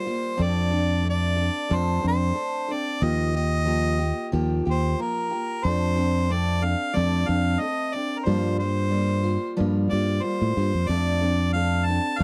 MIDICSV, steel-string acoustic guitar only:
0, 0, Header, 1, 2, 480
1, 0, Start_track
1, 0, Tempo, 656455
1, 276, Time_signature, 4, 2, 24, 8
1, 8946, End_track
2, 0, Start_track
2, 0, Title_t, "Steel-string acoustic guitar"
2, 0, Program_c, 0, 25
2, 42, Note_on_c, 0, 72, 56
2, 43, Note_on_c, 0, 65, 48
2, 49, Note_on_c, 0, 58, 51
2, 50, Note_on_c, 0, 55, 47
2, 270, Note_off_c, 0, 58, 0
2, 272, Note_off_c, 0, 65, 0
2, 272, Note_on_c, 0, 53, 69
2, 273, Note_off_c, 0, 55, 0
2, 273, Note_on_c, 0, 60, 85
2, 275, Note_on_c, 0, 62, 77
2, 276, Note_on_c, 0, 57, 70
2, 279, Note_off_c, 0, 72, 0
2, 282, Note_on_c, 0, 69, 88
2, 512, Note_off_c, 0, 69, 0
2, 515, Note_off_c, 0, 53, 0
2, 515, Note_off_c, 0, 60, 0
2, 516, Note_off_c, 0, 62, 0
2, 517, Note_off_c, 0, 57, 0
2, 521, Note_on_c, 0, 69, 48
2, 527, Note_on_c, 0, 62, 48
2, 530, Note_on_c, 0, 60, 42
2, 751, Note_off_c, 0, 60, 0
2, 752, Note_on_c, 0, 57, 52
2, 757, Note_off_c, 0, 62, 0
2, 759, Note_off_c, 0, 69, 0
2, 760, Note_on_c, 0, 60, 53
2, 765, Note_on_c, 0, 62, 64
2, 767, Note_on_c, 0, 69, 69
2, 989, Note_off_c, 0, 69, 0
2, 992, Note_off_c, 0, 62, 0
2, 995, Note_off_c, 0, 57, 0
2, 998, Note_on_c, 0, 69, 48
2, 999, Note_off_c, 0, 60, 0
2, 1000, Note_on_c, 0, 62, 44
2, 1015, Note_on_c, 0, 60, 37
2, 1237, Note_off_c, 0, 60, 0
2, 1239, Note_off_c, 0, 69, 0
2, 1240, Note_off_c, 0, 62, 0
2, 1240, Note_on_c, 0, 57, 78
2, 1242, Note_on_c, 0, 53, 72
2, 1245, Note_on_c, 0, 60, 74
2, 1248, Note_on_c, 0, 69, 78
2, 1255, Note_on_c, 0, 62, 75
2, 1460, Note_off_c, 0, 69, 0
2, 1469, Note_on_c, 0, 69, 58
2, 1472, Note_off_c, 0, 60, 0
2, 1473, Note_off_c, 0, 62, 0
2, 1480, Note_off_c, 0, 57, 0
2, 1480, Note_on_c, 0, 60, 49
2, 1481, Note_off_c, 0, 53, 0
2, 1482, Note_on_c, 0, 62, 52
2, 1706, Note_off_c, 0, 60, 0
2, 1706, Note_on_c, 0, 57, 55
2, 1707, Note_off_c, 0, 62, 0
2, 1715, Note_off_c, 0, 69, 0
2, 1715, Note_on_c, 0, 60, 54
2, 1715, Note_on_c, 0, 62, 55
2, 1723, Note_on_c, 0, 69, 56
2, 1954, Note_off_c, 0, 57, 0
2, 1954, Note_off_c, 0, 69, 0
2, 1958, Note_off_c, 0, 60, 0
2, 1958, Note_off_c, 0, 62, 0
2, 1963, Note_on_c, 0, 69, 46
2, 1966, Note_on_c, 0, 62, 45
2, 1983, Note_on_c, 0, 60, 39
2, 2202, Note_off_c, 0, 69, 0
2, 2204, Note_off_c, 0, 62, 0
2, 2204, Note_on_c, 0, 53, 76
2, 2207, Note_off_c, 0, 60, 0
2, 2207, Note_on_c, 0, 51, 69
2, 2209, Note_on_c, 0, 65, 74
2, 2210, Note_on_c, 0, 58, 80
2, 2212, Note_on_c, 0, 67, 79
2, 2433, Note_off_c, 0, 67, 0
2, 2438, Note_off_c, 0, 65, 0
2, 2442, Note_on_c, 0, 67, 47
2, 2443, Note_off_c, 0, 53, 0
2, 2445, Note_off_c, 0, 51, 0
2, 2446, Note_off_c, 0, 58, 0
2, 2447, Note_on_c, 0, 65, 46
2, 2454, Note_on_c, 0, 58, 41
2, 2665, Note_off_c, 0, 58, 0
2, 2670, Note_on_c, 0, 53, 68
2, 2672, Note_off_c, 0, 67, 0
2, 2674, Note_on_c, 0, 58, 59
2, 2675, Note_off_c, 0, 65, 0
2, 2681, Note_on_c, 0, 67, 61
2, 2684, Note_on_c, 0, 65, 62
2, 2906, Note_off_c, 0, 67, 0
2, 2909, Note_off_c, 0, 65, 0
2, 2915, Note_on_c, 0, 67, 55
2, 2916, Note_off_c, 0, 53, 0
2, 2917, Note_off_c, 0, 58, 0
2, 2918, Note_on_c, 0, 65, 45
2, 2925, Note_on_c, 0, 58, 43
2, 3153, Note_off_c, 0, 65, 0
2, 3159, Note_off_c, 0, 58, 0
2, 3159, Note_off_c, 0, 67, 0
2, 3159, Note_on_c, 0, 51, 75
2, 3160, Note_on_c, 0, 53, 79
2, 3162, Note_on_c, 0, 65, 79
2, 3168, Note_on_c, 0, 58, 90
2, 3171, Note_on_c, 0, 67, 88
2, 3395, Note_off_c, 0, 67, 0
2, 3401, Note_off_c, 0, 51, 0
2, 3402, Note_off_c, 0, 53, 0
2, 3403, Note_off_c, 0, 65, 0
2, 3403, Note_on_c, 0, 67, 66
2, 3406, Note_off_c, 0, 58, 0
2, 3411, Note_on_c, 0, 65, 46
2, 3417, Note_on_c, 0, 58, 43
2, 3642, Note_off_c, 0, 58, 0
2, 3644, Note_off_c, 0, 65, 0
2, 3644, Note_off_c, 0, 67, 0
2, 3646, Note_on_c, 0, 53, 54
2, 3651, Note_on_c, 0, 58, 62
2, 3653, Note_on_c, 0, 65, 60
2, 3657, Note_on_c, 0, 67, 63
2, 3865, Note_off_c, 0, 67, 0
2, 3874, Note_on_c, 0, 67, 47
2, 3875, Note_off_c, 0, 65, 0
2, 3884, Note_on_c, 0, 65, 43
2, 3886, Note_off_c, 0, 53, 0
2, 3888, Note_off_c, 0, 58, 0
2, 3898, Note_on_c, 0, 58, 39
2, 4120, Note_off_c, 0, 67, 0
2, 4124, Note_off_c, 0, 65, 0
2, 4125, Note_off_c, 0, 58, 0
2, 4125, Note_on_c, 0, 53, 67
2, 4128, Note_on_c, 0, 60, 63
2, 4133, Note_on_c, 0, 57, 76
2, 4135, Note_on_c, 0, 69, 81
2, 4136, Note_on_c, 0, 62, 67
2, 4352, Note_off_c, 0, 69, 0
2, 4358, Note_off_c, 0, 62, 0
2, 4361, Note_on_c, 0, 69, 50
2, 4365, Note_off_c, 0, 53, 0
2, 4367, Note_off_c, 0, 60, 0
2, 4367, Note_on_c, 0, 62, 45
2, 4369, Note_off_c, 0, 57, 0
2, 4374, Note_on_c, 0, 60, 45
2, 4597, Note_off_c, 0, 60, 0
2, 4599, Note_off_c, 0, 62, 0
2, 4601, Note_on_c, 0, 57, 66
2, 4603, Note_off_c, 0, 69, 0
2, 4606, Note_on_c, 0, 60, 65
2, 4607, Note_on_c, 0, 62, 61
2, 4614, Note_on_c, 0, 69, 64
2, 4827, Note_off_c, 0, 69, 0
2, 4829, Note_off_c, 0, 62, 0
2, 4836, Note_on_c, 0, 69, 54
2, 4837, Note_on_c, 0, 62, 44
2, 4841, Note_off_c, 0, 60, 0
2, 4843, Note_off_c, 0, 57, 0
2, 4850, Note_on_c, 0, 60, 39
2, 5066, Note_off_c, 0, 62, 0
2, 5067, Note_off_c, 0, 60, 0
2, 5071, Note_on_c, 0, 53, 70
2, 5075, Note_on_c, 0, 57, 82
2, 5075, Note_on_c, 0, 62, 76
2, 5076, Note_off_c, 0, 69, 0
2, 5076, Note_on_c, 0, 60, 77
2, 5085, Note_on_c, 0, 69, 81
2, 5307, Note_off_c, 0, 69, 0
2, 5313, Note_off_c, 0, 62, 0
2, 5316, Note_on_c, 0, 69, 58
2, 5318, Note_off_c, 0, 53, 0
2, 5320, Note_off_c, 0, 57, 0
2, 5321, Note_off_c, 0, 60, 0
2, 5322, Note_on_c, 0, 62, 60
2, 5328, Note_on_c, 0, 60, 51
2, 5549, Note_off_c, 0, 60, 0
2, 5553, Note_on_c, 0, 57, 50
2, 5557, Note_on_c, 0, 60, 56
2, 5558, Note_off_c, 0, 69, 0
2, 5564, Note_off_c, 0, 62, 0
2, 5567, Note_on_c, 0, 69, 66
2, 5799, Note_off_c, 0, 57, 0
2, 5799, Note_off_c, 0, 69, 0
2, 5801, Note_off_c, 0, 60, 0
2, 5808, Note_on_c, 0, 62, 47
2, 5808, Note_on_c, 0, 69, 47
2, 5816, Note_on_c, 0, 60, 45
2, 6037, Note_off_c, 0, 60, 0
2, 6037, Note_on_c, 0, 43, 66
2, 6039, Note_off_c, 0, 62, 0
2, 6040, Note_on_c, 0, 58, 77
2, 6041, Note_on_c, 0, 55, 84
2, 6042, Note_on_c, 0, 65, 91
2, 6045, Note_off_c, 0, 69, 0
2, 6045, Note_on_c, 0, 53, 80
2, 6048, Note_on_c, 0, 72, 93
2, 6279, Note_off_c, 0, 65, 0
2, 6279, Note_off_c, 0, 72, 0
2, 6281, Note_off_c, 0, 43, 0
2, 6282, Note_off_c, 0, 58, 0
2, 6283, Note_off_c, 0, 55, 0
2, 6285, Note_off_c, 0, 53, 0
2, 6288, Note_on_c, 0, 65, 47
2, 6288, Note_on_c, 0, 72, 53
2, 6294, Note_on_c, 0, 58, 44
2, 6296, Note_on_c, 0, 55, 43
2, 6500, Note_off_c, 0, 55, 0
2, 6506, Note_off_c, 0, 65, 0
2, 6509, Note_off_c, 0, 58, 0
2, 6509, Note_on_c, 0, 55, 56
2, 6515, Note_off_c, 0, 72, 0
2, 6515, Note_on_c, 0, 65, 57
2, 6517, Note_on_c, 0, 58, 61
2, 6524, Note_on_c, 0, 72, 73
2, 6744, Note_off_c, 0, 72, 0
2, 6745, Note_off_c, 0, 65, 0
2, 6752, Note_on_c, 0, 72, 56
2, 6754, Note_on_c, 0, 65, 45
2, 6756, Note_off_c, 0, 55, 0
2, 6758, Note_off_c, 0, 58, 0
2, 6766, Note_on_c, 0, 55, 38
2, 6767, Note_on_c, 0, 58, 37
2, 6986, Note_off_c, 0, 55, 0
2, 6990, Note_off_c, 0, 58, 0
2, 6994, Note_on_c, 0, 53, 88
2, 6995, Note_off_c, 0, 65, 0
2, 6995, Note_on_c, 0, 55, 84
2, 6996, Note_on_c, 0, 43, 82
2, 6998, Note_off_c, 0, 72, 0
2, 6999, Note_on_c, 0, 58, 83
2, 7004, Note_on_c, 0, 65, 97
2, 7007, Note_on_c, 0, 72, 76
2, 7227, Note_off_c, 0, 72, 0
2, 7236, Note_off_c, 0, 58, 0
2, 7236, Note_on_c, 0, 72, 53
2, 7238, Note_off_c, 0, 65, 0
2, 7239, Note_off_c, 0, 53, 0
2, 7239, Note_off_c, 0, 55, 0
2, 7240, Note_off_c, 0, 43, 0
2, 7245, Note_on_c, 0, 58, 51
2, 7247, Note_on_c, 0, 65, 51
2, 7257, Note_on_c, 0, 55, 47
2, 7468, Note_off_c, 0, 55, 0
2, 7471, Note_off_c, 0, 58, 0
2, 7476, Note_off_c, 0, 65, 0
2, 7477, Note_on_c, 0, 55, 53
2, 7479, Note_off_c, 0, 72, 0
2, 7480, Note_on_c, 0, 58, 56
2, 7485, Note_on_c, 0, 65, 53
2, 7495, Note_on_c, 0, 72, 56
2, 7718, Note_off_c, 0, 65, 0
2, 7719, Note_off_c, 0, 55, 0
2, 7721, Note_off_c, 0, 58, 0
2, 7722, Note_off_c, 0, 72, 0
2, 7727, Note_on_c, 0, 65, 48
2, 7731, Note_on_c, 0, 72, 53
2, 7736, Note_on_c, 0, 58, 42
2, 7739, Note_on_c, 0, 55, 37
2, 7959, Note_on_c, 0, 53, 67
2, 7964, Note_off_c, 0, 65, 0
2, 7966, Note_off_c, 0, 55, 0
2, 7966, Note_off_c, 0, 72, 0
2, 7968, Note_off_c, 0, 58, 0
2, 7969, Note_on_c, 0, 57, 66
2, 7970, Note_on_c, 0, 69, 85
2, 7971, Note_on_c, 0, 60, 82
2, 7972, Note_on_c, 0, 62, 79
2, 8186, Note_off_c, 0, 69, 0
2, 8194, Note_on_c, 0, 69, 52
2, 8197, Note_off_c, 0, 62, 0
2, 8200, Note_off_c, 0, 53, 0
2, 8203, Note_off_c, 0, 60, 0
2, 8205, Note_off_c, 0, 57, 0
2, 8206, Note_on_c, 0, 62, 41
2, 8211, Note_on_c, 0, 60, 40
2, 8437, Note_off_c, 0, 69, 0
2, 8439, Note_off_c, 0, 60, 0
2, 8439, Note_on_c, 0, 57, 53
2, 8443, Note_off_c, 0, 62, 0
2, 8448, Note_on_c, 0, 60, 60
2, 8449, Note_on_c, 0, 69, 64
2, 8452, Note_on_c, 0, 62, 57
2, 8678, Note_off_c, 0, 69, 0
2, 8679, Note_off_c, 0, 57, 0
2, 8683, Note_off_c, 0, 60, 0
2, 8686, Note_off_c, 0, 62, 0
2, 8687, Note_on_c, 0, 69, 53
2, 8698, Note_on_c, 0, 62, 41
2, 8699, Note_on_c, 0, 60, 45
2, 8909, Note_off_c, 0, 60, 0
2, 8913, Note_off_c, 0, 62, 0
2, 8915, Note_on_c, 0, 53, 61
2, 8918, Note_on_c, 0, 60, 74
2, 8919, Note_off_c, 0, 69, 0
2, 8921, Note_on_c, 0, 57, 77
2, 8922, Note_on_c, 0, 62, 79
2, 8946, Note_off_c, 0, 53, 0
2, 8946, Note_off_c, 0, 57, 0
2, 8946, Note_off_c, 0, 60, 0
2, 8946, Note_off_c, 0, 62, 0
2, 8946, End_track
0, 0, End_of_file